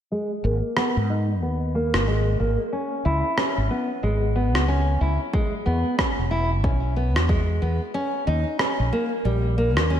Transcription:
0.11 G#3
0.44 G#1 A#3
0.77 B3, cross-stick
0.96 G#2
1.10 D#4
1.42 D#2 B3
1.75 A#3
1.94 G#1, cross-stick
2.07 G#3
2.40 G#1 A#3
2.72 C#4
3.05 C#2 E4
3.38 C#4, cross-stick
3.57 G#1
3.70 B3
4.03 G#1 G#3
4.36 B3
4.55 C#2, cross-stick
4.68 C#4
5.01 C#2 E4
5.33 G#3, kick
5.66 E2 B3
5.98 C#4, kick, cross-stick
6.19 E1
6.31 E4
6.64 B1 C#4, kick
6.96 B3
7.16 E2, cross-stick
7.29 G#3, kick
7.62 E2 B3
7.94 C#4
8.27 D#2 D#4
8.59 C#4, cross-stick
8.79 A#1
8.93 A#3
9.25 A#1 G3
9.58 A#3
9.77 D#2, cross-stick
9.90 C#4

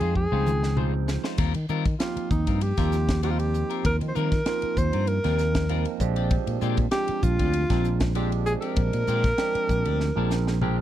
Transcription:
Already playing: F3 G#3 C4 D#4 G#4 G5
0.01 F2 D#4 F4 C5, ride
0.15 G#4, muted clean electric guitar stroke, kick
0.31 C#2 F3 G3 G#3 C4 D#4 F4 C5 G5
0.46 hi-hat pedal, mid tom
0.63 muted clean electric guitar stroke, snare
0.76 F3 G3 G#3 C4 D#4 F4 C5 G5, mid tom
0.94 muted clean electric guitar stroke
1.08 muted clean electric guitar stroke, snare, hi-hat pedal
1.24 D#4 F4 C5, snare
1.38 D#2 G3 C4 F4 A#4, kick, crash, ride
1.54 D#3, muted clean electric guitar stroke, ride
1.68 D#3 G3 C4 F4 A#4, hi-hat pedal
1.85 muted clean electric guitar stroke, kick, ride
1.99 F3 A#3 C4 D#4 F4 G4, snare, ride
2.16 muted fretless electric bass stroke, muted clean electric guitar stroke, ride
2.31 D#2 D#4, muted clean electric guitar stroke, kick, hi-hat pedal
2.47 G2 C4 F4 A#4, kick, ride
2.61 G4, muted clean electric guitar stroke, ride
2.77 D#2 F3 G3 A#3 C4 D#4 F4 A#4, kick, snare, ride
2.92 snare, hi-hat pedal
3.09 muted clean electric guitar stroke, kick, snare, ride
3.23 F3 G3 A#3 C4 D#4 F4 G4 A#4, ride
3.30 F4
3.39 G4, ride
3.54 muted clean electric guitar stroke, hi-hat pedal
3.70 C4 F4 A#4, ride
3.85 D#2 A#4, kick, ride
4.01 D#3, muted clean electric guitar stroke, ride
4.08 C5
4.15 D#3 G3 C4 F4 A#4, hi-hat pedal
4.32 muted clean electric guitar stroke, kick, snare, ride
4.46 F3 A#3 C4 D#4 F4, snare, ride
4.62 muted clean electric guitar stroke, muted fretless electric bass stroke, ride
4.77 D#2 C5, muted clean electric guitar stroke, kick, hi-hat pedal
4.93 G2 C4 F4 A#4, ride
5.07 A#4, muted clean electric guitar stroke, ride
5.24 D#2 F3 G3 A#3 C4 D#4 F4 A#4, snare, ride
5.38 snare, hi-hat pedal
5.55 muted clean electric guitar stroke, kick, snare, ride
5.69 F3 G3 A#3 C4 D#4 F4 A#4, ride
5.85 muted clean electric guitar stroke, ride
6.00 A#1 F3 G#3 C4 D4 G4, muted clean electric guitar stroke, kick, hi-hat pedal
6.16 C4 D4 G4, ride
6.31 kick, ride
6.47 A#2, muted clean electric guitar stroke, ride
6.61 A#2 G#3 C4 D4 G4, hi-hat pedal
6.77 muted clean electric guitar stroke, kick, ride
6.91 F3 G#3 C4 D4 G4, snare, ride
7.08 muted fretless electric bass stroke, muted clean electric guitar stroke, ride
7.22 A#1 F4, muted clean electric guitar stroke, kick, hi-hat pedal
7.39 D2 C4 D4 G4, kick, ride
7.53 muted clean electric guitar stroke, ride
7.69 A#1 F3 G#3 C4 D4 G4 A#4, kick, snare, ride
7.84 hi-hat pedal
8.00 muted clean electric guitar stroke, kick, snare, ride
8.15 F3 G#3 C4 D4 G4, ride
8.32 muted clean electric guitar stroke, ride
8.46 G#4, muted clean electric guitar stroke, hi-hat pedal
8.61 C4 D4 G4 A#4, ride
8.76 A#1, kick, ride
8.93 A#2, muted clean electric guitar stroke, ride
9.07 A#2 G#3 C4 D4 G4, hi-hat pedal
9.24 muted clean electric guitar stroke, kick, snare, ride
9.38 F3 G#3 C4 D4 G4, snare, ride
9.55 muted fretless electric bass stroke, muted clean electric guitar stroke, ride
9.69 A#1, muted clean electric guitar stroke, kick, hi-hat pedal
9.85 D2 C4 D4 G4, ride
10.00 muted clean electric guitar stroke, snare
10.16 A#1 F3 G#3 C4 D4 G4 A#4
10.31 snare, hi-hat pedal
10.47 muted clean electric guitar stroke, snare
10.61 F3 G#3 C4 D4 G4 A#4, mid tom

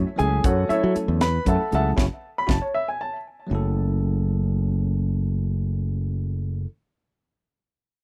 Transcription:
0.16 C#2 F#3 A3 C#4 E4 G#4 A4 G#5, closed hi-hat
0.44 F#2 F#4 A4 C#5 F#5, kick, closed hi-hat
0.68 F#3 A3 C#4 E4 A4 C#5 E5, muted fingered electric bass stroke, closed hi-hat
0.84 F#3
0.94 F#3 A3 C#4 E4 A4, muted fingered electric bass stroke, closed hi-hat
1.08 E2
1.21 B4 B5, snare, closed hi-hat
1.45 F#2 F#3 A3 C#4 E4 A4 E5 F#5 A5, kick, closed hi-hat
1.71 C#2 F#3 A3 C#4 E4 G#4 A4 E5 F#5 A5, closed hi-hat
1.97 F#1 C#4 E4 F#4, kick, snare
2.38 B5
2.47 F#1 C#4 E4 F#4 A5, kick, snare
2.62 C#5
2.74 E5
2.88 G#5
3.01 A5
3.47 F#3 A3 C#4
3.51 F#1 E4 A4

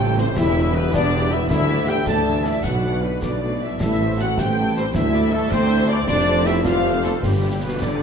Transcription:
Already playing: A1 A2 E3 G3 C4 E4 G4 C5 G5 C6
0.00 A3 E4 A4 G5
0.09 E5
0.17 G3 C4 G4 C5, snare
0.28 E4
0.35 E1 E2 E3 B3 E4 G4 E5, concert bass drum, snare
0.46 B3
0.55 G3 G4 B4
0.66 G4
0.74 E3 B3 E4 G4 B4
0.85 E5
0.93 E1 E2 G3 D4 G4 B4 D5 G5, concert bass drum, snare
1.04 B5
1.13 E3 E4 G4
1.23 E5
1.30 G3 E4 G4 B4 E5
1.42 E4
1.49 D2 D3 E3 D4 E4 E5, concert bass drum, snare
1.60 A3
1.70 D3 D4 E4 D5
1.79 A4
1.87 E3 E4 G4 D5 E5 G5, snare
1.97 E5
2.06 D2 D3 D4 A4 D5 A5, concert bass drum, snare
2.16 D6
2.25 E3 E4 E5 A5
2.35 E3 E5
2.44 D3 D4 E4 A4 D5 E5, snare
2.56 E4
2.64 B1 B2 D3 F#3 D4 F#4 B4 F#5, concert bass drum, snare
2.75 F#3
2.84 F#3 B3 D4 D5
2.94 F#4
3.03 D3 B3 D4 B4 D5
3.13 F#4
3.22 B1 B2 F#3 B3 D4 D5 F#5, concert bass drum, snare
3.33 D6
3.42 A3 B4 F#5
3.52 D5
3.60 G3 E4 F#4 D5 E5
3.72 D4
3.80 A1 A2 A3 E4 A4 E5, concert bass drum, snare, crash
3.92 E3
4.00 G3 A3 G4 C5
4.10 G4
4.17 G3 A3 C4 E4 F#4 A4 C5 F#5, snare
4.30 A4
4.37 A1 A2 G3 G4 C5 G5, concert bass drum, snare
4.48 C6
4.57 A3 E4 A4 G5
4.67 A4
4.75 G3 C4 G4 C5, snare
4.86 A3
4.95 D2 D3 E3 E4 E5, concert bass drum, snare
5.05 D4
5.14 A3 D4 D5
5.32 E3 A3 E4 A4 D5 E5
5.43 A4
5.50 D2 A3 C4 D4 C5 D5 A5, concert bass drum, snare
5.63 D6
5.68 E3 E4 E5 A5
5.81 A4
5.88 E3 A3 D4 D5
6.00 D4
6.06 F1 F2 A3 D4 G4 C5 D5, concert bass drum, snare
6.18 C3
6.28 A3
6.37 G4
6.45 G3 A3 E4 C5 E5, snare
6.56 A4
6.62 A3 F4 G4 C5 F5 G5, concert bass drum, snare
6.76 C6
6.84 G5
6.95 A4
7.02 G3 A3 G4 A4, snare
7.14 A3
7.22 G1 G2 G3 G4 B4, concert bass drum, snare
7.34 D3
7.43 G3
7.53 G4
7.61 B2 G3 B3 B4
7.72 G4
7.81 D3 D4 D5, concert bass drum, snare
7.91 B5

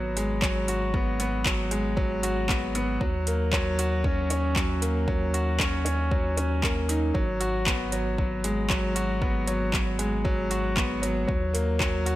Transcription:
Already playing: G#1 F#3 B3 F#4
0.17 G#3, closed hi-hat
0.42 F#3, kick, clap
0.68 F#4, closed hi-hat
0.94 B3, kick
1.20 B3, closed hi-hat
1.45 F#3, kick, clap
1.71 G#3, closed hi-hat
1.97 F#3, kick
2.23 F#4, closed hi-hat
2.49 B3, kick, clap
2.75 B3, closed hi-hat
3.01 D#2 F#3, kick
3.27 A#3, closed hi-hat
3.53 F#3, kick, clap
3.79 F#4, closed hi-hat
4.04 C#4, kick
4.30 C#4, closed hi-hat
4.56 F#3, kick, clap
4.81 A#3, closed hi-hat
5.08 F#3, kick
5.34 F#4, closed hi-hat
5.59 C#4, kick, clap
5.85 C#4, closed hi-hat
6.11 F#3, kick
6.37 C#4, closed hi-hat
6.63 A#3, kick, clap
6.89 D#4, closed hi-hat
7.14 G#1 F#3, kick
7.40 F#4, closed hi-hat
7.66 B3, kick, clap
7.92 F#3, closed hi-hat
8.18 F#3, kick
8.44 G#3, closed hi-hat
8.70 F#3, kick, clap
8.95 F#4, closed hi-hat
9.22 B3, kick
9.47 F#3, closed hi-hat
9.73 F#3, kick, clap
9.99 G#3, closed hi-hat
10.25 F#3, kick
10.50 F#4, closed hi-hat
10.76 B3, kick, clap
11.02 F#3, closed hi-hat
11.27 D#2 F#3, kick
11.54 A#3, closed hi-hat
11.79 F#3, kick, clap
12.06 F#4, closed hi-hat

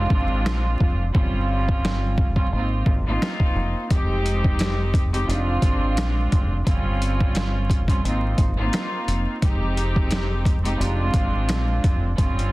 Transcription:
Already playing: G#3 C4 D4 F4
0.10 G#1, kick
0.45 A#1, snare
0.81 F1, kick
1.13 G1 G3 C4 C#4 F4, kick
1.69 kick
1.85 snare
2.18 kick
2.36 G3 C4 C#4 F4, kick
2.52 G#1 A#3 C4 D#4 F4
2.86 G#1, kick
3.06 A#3 C4 D#4 F4
3.22 snare
3.40 kick
3.55 F1
3.91 F1 G#3 C4 D#4 G4, kick, closed hi-hat
4.26 closed hi-hat
4.44 kick
4.59 snare, closed hi-hat
4.94 kick, closed hi-hat
5.13 G#3 C4 D#4 G4, closed hi-hat
5.25 F1 G#3 C4 D4 F4
5.29 closed hi-hat
5.62 G#1, kick, closed hi-hat
5.97 A#1, snare, closed hi-hat
6.32 F1, kick, closed hi-hat
6.65 G1 G3 C4 C#4 F4, kick, closed hi-hat
7.02 closed hi-hat
7.20 kick
7.35 snare, closed hi-hat
7.70 kick, closed hi-hat
7.88 G3 C4 C#4 F4, kick, closed hi-hat
8.04 G#1 A#3 C4 D#4 F4, closed hi-hat
8.38 G#1, kick, closed hi-hat
8.58 A#3 C4 D#4 F4
8.73 snare, closed hi-hat
9.08 F1, closed hi-hat
9.42 F1 G#3 C4 D#4 G4, kick, closed hi-hat
9.77 closed hi-hat
9.96 kick
10.11 snare, closed hi-hat
10.45 kick, closed hi-hat
10.64 G#3 C4 D#4 G4, closed hi-hat
10.77 F1 G#3 C4 D4 F4, closed hi-hat
11.14 G#1, kick, closed hi-hat
11.49 A#1, snare, closed hi-hat
11.84 F1, kick, closed hi-hat
12.17 G1 G3 C4 C#4 F4, kick, closed hi-hat
12.39 closed hi-hat

